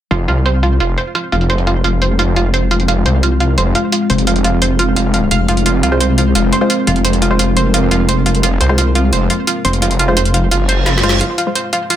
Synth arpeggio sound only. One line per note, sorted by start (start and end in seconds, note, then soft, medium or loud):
0.11 0.19 F4 medium
0.28 0.37 F4 medium
0.46 0.58 C5 medium
0.63 0.71 F4 medium
0.80 0.89 F4 medium
0.98 1.10 C5 medium
1.15 1.23 F4 medium
1.32 1.41 F4 medium
1.50 1.62 C5 medium
1.67 1.75 F4 medium
1.84 1.93 F4 medium
2.02 2.14 C5 medium
2.19 2.27 F4 medium
2.36 2.45 F4 medium
2.54 2.66 C5 medium
2.71 2.79 F4 medium
2.88 2.97 F4 medium
3.06 3.18 C5 medium
3.23 3.31 F4 medium
3.40 3.49 F4 medium
3.58 3.70 C5 medium
3.75 3.84 F4 medium
3.92 4.01 F4 medium
4.10 4.22 C5 medium
4.27 4.36 F4 medium
4.44 4.53 F4 medium
4.62 4.74 C5 medium
4.79 4.88 F4 medium
4.96 5.05 F4 medium
5.14 5.22 F4 medium
5.31 5.36 F5 loud
5.49 5.57 F4 medium
5.66 5.74 F4 medium
5.83 5.92 F4 medium
6.01 6.09 C5 medium
6.18 6.26 F4 medium
6.35 6.44 F4 medium
6.53 6.61 C5 medium
6.70 6.78 F4 medium
6.87 6.96 F4 medium
7.05 7.13 C5 medium
7.22 7.30 F4 medium
7.39 7.48 F4 medium
7.57 7.65 C5 medium
7.74 7.82 F4 medium
7.91 8.00 F4 medium
8.09 8.17 C5 medium
8.26 8.34 F4 medium
8.43 8.52 F4 medium
8.61 8.69 C5 medium
8.78 8.86 F4 medium
8.95 9.04 F4 medium
9.13 9.21 C5 medium
9.30 9.38 F4 medium
9.47 9.56 F4 medium
9.65 9.73 C5 medium
9.82 9.90 F4 medium
9.99 10.08 F4 medium
10.17 10.25 C5 medium
10.34 10.42 F4 medium
10.51 10.60 F4 medium
10.69 10.77 C5 medium
10.86 10.95 F4 medium
11.03 11.12 F4 medium
11.21 11.29 F4 medium
11.38 11.47 F4 medium
11.55 11.64 C5 medium
11.73 11.81 F4 medium
11.90 11.96 F4 medium